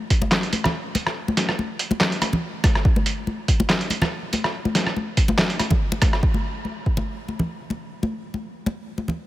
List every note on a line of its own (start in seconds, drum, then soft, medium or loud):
0.10 kick medium
0.10 closed hi-hat medium
0.22 muted conga medium
0.22 high conga medium
0.32 snare loud
0.32 clap medium
0.43 closed hi-hat soft
0.53 closed hi-hat medium
0.53 high conga medium
0.64 cross-stick medium
0.64 low conga medium
0.95 closed hi-hat medium
0.95 muted conga soft
0.95 high conga medium
1.07 cross-stick medium
1.28 high conga medium
1.37 snare medium
1.37 closed hi-hat medium
1.49 cross-stick medium
1.59 high conga medium
1.79 closed hi-hat medium
1.91 muted conga medium
1.91 high conga medium
2.01 snare loud
2.01 clap medium
2.12 closed hi-hat soft
2.22 cross-stick medium
2.22 closed hi-hat medium
2.22 high conga medium
2.33 muted conga soft
2.33 low conga medium
2.64 kick loud
2.64 cross-stick medium
2.64 closed hi-hat medium
2.64 high conga medium
2.75 cross-stick medium
2.85 kick loud
2.96 high conga medium
3.06 closed hi-hat medium
3.27 high conga medium
3.48 kick medium
3.48 closed hi-hat medium
3.60 muted conga medium
3.60 high conga medium
3.69 snare loud
3.69 clap medium
3.81 closed hi-hat soft
3.90 closed hi-hat medium
3.90 high conga medium
4.02 cross-stick medium
4.02 low conga medium
4.33 closed hi-hat medium
4.33 muted conga soft
4.33 high conga medium
4.44 cross-stick medium
4.65 high conga medium
4.75 snare medium
4.75 closed hi-hat medium
4.87 cross-stick medium
4.96 high conga medium
5.17 kick medium
5.17 closed hi-hat medium
5.28 muted conga medium
5.28 high conga loud
5.38 snare loud
5.38 clap medium
5.50 closed hi-hat soft
5.59 cross-stick medium
5.59 closed hi-hat medium
5.59 high conga medium
5.70 kick medium
5.70 muted conga soft
5.70 low conga medium
5.92 muted conga medium
6.02 kick loud
6.02 cross-stick medium
6.02 closed hi-hat medium
6.02 high conga medium
6.13 cross-stick medium
6.23 kick loud
6.34 high conga medium
6.65 high conga medium
6.86 kick medium
6.97 muted conga medium
6.97 high conga medium
7.28 high conga medium
7.39 low conga medium
7.70 muted conga soft
7.70 high conga medium
8.03 high conga medium
8.34 high conga medium
8.66 muted conga medium
8.66 high conga loud
8.98 high conga medium
9.08 muted conga soft
9.08 low conga medium